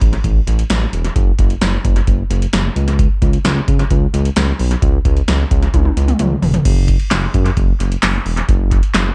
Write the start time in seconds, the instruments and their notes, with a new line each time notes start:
0.01 analog synth bass A1, kick, closed hi-hat
0.13 closed hi-hat
0.24 analog synth bass A1, kick, closed hi-hat
0.47 analog synth bass A1, closed hi-hat
0.59 closed hi-hat
0.70 analog synth bass A1, snare, closed hi-hat
0.93 analog synth bass E1, closed hi-hat
1.05 closed hi-hat
1.16 analog synth bass F#1, kick, closed hi-hat
1.39 analog synth bass F#1, kick, closed hi-hat
1.50 closed hi-hat
1.61 analog synth bass F#1, snare, closed hi-hat
1.85 analog synth bass F#1, kick, closed hi-hat
1.96 closed hi-hat
2.07 analog synth bass F#1, kick, closed hi-hat
2.30 analog synth bass F#1, closed hi-hat
2.42 closed hi-hat
2.53 analog synth bass F#1, snare, closed hi-hat
2.76 analog synth bass C#2, closed hi-hat
2.88 closed hi-hat
2.99 kick, closed hi-hat
3.22 analog synth bass C#2, kick, closed hi-hat
3.33 closed hi-hat
3.45 analog synth bass C#2, snare, closed hi-hat
3.68 analog synth bass C#2, kick, closed hi-hat
3.79 closed hi-hat
3.91 analog synth bass C#2, kick, closed hi-hat
4.14 analog synth bass C#2, closed hi-hat
4.25 closed hi-hat
4.36 analog synth bass C#2, snare, closed hi-hat
4.59 analog synth bass B1, open hi-hat
4.71 closed hi-hat
4.82 analog synth bass C#2, kick, closed hi-hat
5.05 analog synth bass C#2, kick, closed hi-hat
5.17 closed hi-hat
5.28 analog synth bass C#2, snare, closed hi-hat
5.51 analog synth bass C#2, kick, closed hi-hat
5.63 closed hi-hat
5.74 analog synth bass C#2, kick, closed hi-hat, high tom
5.85 high tom
5.97 analog synth bass C#2, closed hi-hat
6.08 closed hi-hat, mid tom
6.19 analog synth bass C#2, closed hi-hat, mid tom
6.42 analog synth bass E1, floor tom, open hi-hat
6.54 closed hi-hat, floor tom
6.65 analog synth bass F#1, kick, closed hi-hat, crash
6.88 kick, closed hi-hat
7.00 closed hi-hat
7.11 analog synth bass F#1, snare, clap, closed hi-hat
7.34 analog synth bass F#2, kick, closed hi-hat
7.46 closed hi-hat
7.57 analog synth bass F#1, kick, closed hi-hat
7.80 analog synth bass F#1, closed hi-hat
7.92 closed hi-hat
8.02 analog synth bass F#1, snare, clap, closed hi-hat
8.26 analog synth bass E1, open hi-hat
8.37 closed hi-hat
8.49 analog synth bass F#1, kick, closed hi-hat
8.71 kick, closed hi-hat
8.83 closed hi-hat
8.94 analog synth bass F#1, snare, clap, closed hi-hat